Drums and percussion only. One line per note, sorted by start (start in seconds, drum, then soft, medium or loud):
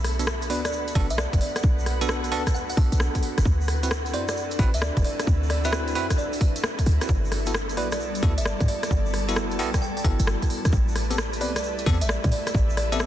0.04 cross-stick medium
0.04 open hi-hat loud
0.19 closed hi-hat medium
0.19 shaker medium
0.27 cross-stick loud
0.27 shaker medium
0.42 closed hi-hat soft
0.42 shaker soft
0.50 open hi-hat loud
0.65 cross-stick medium
0.65 closed hi-hat medium
0.65 shaker medium
0.72 shaker medium
0.88 closed hi-hat soft
0.88 shaker soft
0.95 kick loud
0.95 open hi-hat loud
1.10 closed hi-hat medium
1.10 shaker medium
1.18 cross-stick loud
1.18 shaker medium
1.33 kick loud
1.33 closed hi-hat medium
1.33 shaker soft
1.41 open hi-hat loud
1.56 cross-stick medium
1.56 closed hi-hat medium
1.56 shaker medium
1.63 kick loud
1.63 shaker medium
1.79 shaker soft
1.86 cross-stick medium
1.86 open hi-hat loud
2.01 closed hi-hat medium
2.01 shaker medium
2.08 cross-stick loud
2.08 shaker medium
2.24 closed hi-hat soft
2.24 shaker soft
2.32 open hi-hat loud
2.47 kick medium
2.47 cross-stick medium
2.47 closed hi-hat medium
2.47 shaker medium
2.55 shaker medium
2.69 open hi-hat medium
2.69 shaker soft
2.77 kick loud
2.77 open hi-hat loud
2.92 closed hi-hat medium
2.92 shaker medium
3.00 cross-stick loud
3.00 shaker medium
3.15 kick medium
3.15 closed hi-hat medium
3.15 shaker soft
3.23 open hi-hat loud
3.38 cross-stick medium
3.38 closed hi-hat medium
3.38 shaker medium
3.45 kick loud
3.45 shaker medium
3.61 shaker soft
3.68 cross-stick medium
3.68 open hi-hat loud
3.83 closed hi-hat medium
3.83 shaker medium
3.91 cross-stick loud
3.91 shaker medium
4.06 closed hi-hat soft
4.06 shaker soft
4.14 open hi-hat loud
4.28 cross-stick medium
4.28 closed hi-hat medium
4.28 shaker medium
4.37 shaker medium
4.51 closed hi-hat soft
4.51 shaker soft
4.59 kick loud
4.59 open hi-hat loud
4.74 closed hi-hat medium
4.74 shaker medium
4.82 cross-stick loud
4.82 shaker medium
4.97 kick loud
4.97 closed hi-hat medium
4.97 shaker soft
5.04 open hi-hat loud
5.20 cross-stick medium
5.20 closed hi-hat medium
5.20 shaker medium
5.27 kick loud
5.27 shaker medium
5.43 shaker soft
5.50 cross-stick medium
5.50 open hi-hat loud
5.64 closed hi-hat medium
5.64 shaker medium
5.72 cross-stick loud
5.72 shaker medium
5.88 closed hi-hat soft
5.88 shaker soft
5.95 open hi-hat loud
6.10 kick medium
6.10 cross-stick medium
6.10 closed hi-hat medium
6.10 shaker medium
6.18 shaker medium
6.32 open hi-hat medium
6.32 shaker soft
6.41 kick loud
6.41 open hi-hat loud
6.56 closed hi-hat medium
6.56 shaker medium
6.64 cross-stick loud
6.64 shaker medium
6.79 kick medium
6.79 closed hi-hat soft
6.79 shaker soft
6.86 open hi-hat loud
7.01 cross-stick medium
7.01 closed hi-hat medium
7.01 shaker medium
7.08 kick loud
7.08 shaker medium
7.25 shaker soft
7.32 cross-stick medium
7.32 open hi-hat loud
7.46 closed hi-hat medium
7.46 shaker medium
7.54 cross-stick loud
7.54 shaker medium
7.69 closed hi-hat soft
7.69 shaker soft
7.77 open hi-hat loud
7.92 cross-stick medium
7.92 closed hi-hat medium
7.92 shaker medium
8.00 shaker medium
8.15 closed hi-hat soft
8.15 shaker soft
8.23 kick loud
8.23 open hi-hat medium
8.38 closed hi-hat medium
8.38 shaker medium
8.45 cross-stick loud
8.45 shaker medium
8.60 kick loud
8.60 closed hi-hat medium
8.60 shaker soft
8.68 open hi-hat loud
8.83 cross-stick medium
8.83 closed hi-hat medium
8.83 shaker medium
8.91 kick loud
8.91 shaker medium
9.06 shaker soft
9.14 cross-stick medium
9.14 open hi-hat loud
9.29 closed hi-hat medium
9.29 shaker medium
9.36 cross-stick loud
9.36 shaker medium
9.51 closed hi-hat soft
9.51 shaker soft
9.59 open hi-hat loud
9.74 kick medium
9.74 cross-stick medium
9.74 closed hi-hat medium
9.74 shaker medium
9.82 shaker medium
9.97 open hi-hat medium
9.97 shaker soft
10.04 kick loud
10.04 open hi-hat loud
10.19 closed hi-hat medium
10.19 shaker medium
10.27 cross-stick loud
10.27 shaker medium
10.42 kick medium
10.42 closed hi-hat medium
10.42 shaker soft
10.50 open hi-hat loud
10.65 cross-stick medium
10.65 closed hi-hat medium
10.65 shaker medium
10.72 kick loud
10.72 shaker medium
10.88 shaker soft
10.96 cross-stick medium
10.96 open hi-hat loud
11.11 closed hi-hat medium
11.11 shaker medium
11.18 cross-stick loud
11.18 shaker medium
11.33 closed hi-hat soft
11.33 shaker soft
11.41 open hi-hat loud
11.56 cross-stick medium
11.56 closed hi-hat medium
11.56 shaker medium
11.63 shaker medium
11.79 closed hi-hat soft
11.79 shaker soft
11.86 kick loud
11.86 open hi-hat loud
12.01 closed hi-hat medium
12.01 shaker medium
12.09 cross-stick loud
12.09 shaker medium
12.24 kick loud
12.24 closed hi-hat medium
12.24 shaker soft
12.32 open hi-hat loud
12.47 cross-stick medium
12.47 closed hi-hat medium
12.47 shaker medium
12.54 kick loud
12.54 shaker medium
12.70 shaker soft
12.77 cross-stick medium
12.77 open hi-hat loud
12.92 closed hi-hat medium
12.92 shaker medium
12.99 cross-stick loud
12.99 shaker medium